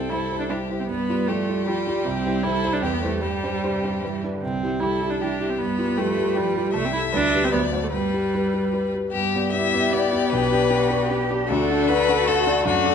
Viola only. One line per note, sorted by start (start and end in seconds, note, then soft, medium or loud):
0.00 0.11 C4 medium
0.10 0.39 E4 medium
0.40 0.44 D4 medium
0.49 0.57 D4 medium
0.80 0.87 C4 soft
0.88 1.29 B3 medium
1.28 1.66 A3 medium
1.67 2.07 G3 medium
2.05 2.45 C4 medium
2.43 2.75 E4 medium
2.73 2.84 D4 medium
2.83 2.95 C4 medium
2.94 3.02 B3 medium
3.02 3.23 A3 medium
3.22 4.22 G3 medium
4.43 4.82 C4 medium
4.80 5.12 E4 medium
5.11 5.20 D4 medium
5.21 5.51 D4 medium
5.50 5.60 C4 soft
5.58 5.99 B3 medium
5.98 6.38 A3 medium
6.36 6.74 G3 medium
6.74 6.87 A3 medium
6.85 6.92 C4 medium
6.93 7.01 E4 medium
7.14 7.46 D4 medium
7.45 7.52 C4 medium
7.52 7.60 B3 medium
7.84 7.87 A3 medium
7.93 8.92 G3 medium
9.14 11.45 B3 medium
11.48 12.95 A3 medium